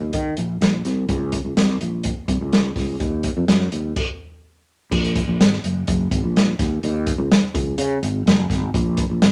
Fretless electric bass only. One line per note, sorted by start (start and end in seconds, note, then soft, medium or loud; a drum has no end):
0.01 0.11 D#2 medium
0.14 0.33 D#3 medium
0.38 0.57 A#1 medium
0.61 0.80 A#1 medium
0.85 1.05 C2 medium
1.09 1.38 C#2 loud
1.45 1.55 C#2 medium
1.57 1.76 C2 medium
1.81 2.10 A#1 medium
2.28 2.38 C2 medium
2.41 2.70 C#2 medium
2.76 2.95 C#2 medium
3.00 3.29 D#2 loud
3.37 3.46 F2 medium
3.48 3.68 F#2 loud
3.72 3.92 D#2 medium
4.91 5.20 A#1 loud
5.28 5.37 A#1 medium
5.40 5.59 G#1 medium
5.64 5.83 F#1 medium
5.88 6.07 F#1 loud
6.11 6.21 G#1 medium
6.24 6.52 A#1 medium
6.59 6.78 D#2 medium
6.84 7.12 D#2 loud
7.18 7.28 C#2 medium
7.43 muted fretless electric bass stroke soft
7.54 7.73 C#2 loud
7.78 7.97 C#3 loud
8.03 8.22 G#1 loud
8.26 8.45 F#1 medium
8.50 8.69 G#1 medium
8.74 9.03 A#1 loud
9.10 9.19 A#1 medium
9.22 9.32 G#1 loud